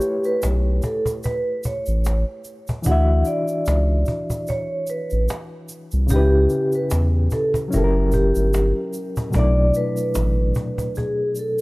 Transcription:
Already playing: A3 E4 G4 B4 C#5
0.01 cajon slap, shaker
0.24 B4, shaker
0.42 B1, cajon slap, shaker
0.82 A4, cajon bass, shaker
1.06 cajon bass, shaker
1.23 B4, cajon bass, shaker
1.63 C#5, cajon bass, shaker
1.86 A1, shaker
2.05 cajon slap, shaker
2.44 cajon slap, shaker
2.67 cajon bass, shaker
2.82 E3 D4 F#5, cajon bass, shaker
2.87 D2 E4 F#4
2.91 E5
3.25 D5, cajon slap, shaker
3.48 shaker
3.66 C#2, cajon slap, shaker
4.06 cajon bass, shaker
4.30 cajon bass, shaker
4.47 C#5, cajon bass, shaker
4.87 B4, cajon slap, shaker
5.10 A1, shaker
5.28 cajon slap, shaker
5.69 cajon slap, shaker
5.91 C2, shaker
6.07 C#2 C#3 C#4, cajon bass, shaker
6.11 D#4 G4
6.16 E4 B4
6.49 cajon slap, shaker
6.72 B4, shaker
6.90 E2, cajon slap, shaker
7.30 A4, cajon bass, shaker
7.54 cajon bass, shaker
7.68 F#3 C#4
7.72 F#1 E4 G4 A#4, cajon bass, shaker
7.78 A4
7.84 A#4
8.12 G4, cajon bass, shaker
8.35 G1, shaker
8.54 cajon slap, shaker
8.93 cajon slap, shaker
9.16 cajon bass, shaker
9.30 B2 F#3 A3, cajon bass, shaker
9.35 B1 D4 E4 D5
9.39 D5
9.73 B4, cajon slap, shaker
9.97 shaker
10.15 A1, cajon slap, shaker
10.55 cajon bass, shaker
10.78 cajon bass, shaker
10.95 G#4, cajon bass, shaker
11.35 A4, cajon slap, shaker

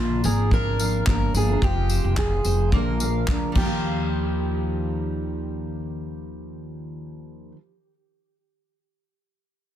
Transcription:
Already playing: A#1 A#2 D3 F3 A#3 D4 F4 A#4
0.00 D4
0.24 G#1 F3 A#3 D4 G#4 A#4, tambourine
0.51 D4 A#4, kick
0.79 F3 A#3 D4 A#4 F5, tambourine
1.06 G1 F3 A#3 D4 A#4, kick, clap
1.34 G1 F3 A#3 D4 G#4 A#4, tambourine
1.49 F3 A#3 D4 A#4
1.62 F1 F3 G#3 C4 F4 G4, kick
1.90 C5, tambourine
2.04 F1
2.17 F4 G#4, kick, clap
2.45 F1 F3 C4 F4 G#4 C5, tambourine
2.72 A#1 A#2 D3 F3 A#3 D4 A#4, kick
3.00 F3 A#3 D4 A#4 F5, tambourine
3.27 D2 F3 A#3 D4 A#4, kick, clap
3.52 D#2 D#3 G3, kick, crash
3.57 F3 A#3 F4 G4
3.62 F4 A#4
3.66 G4 F5

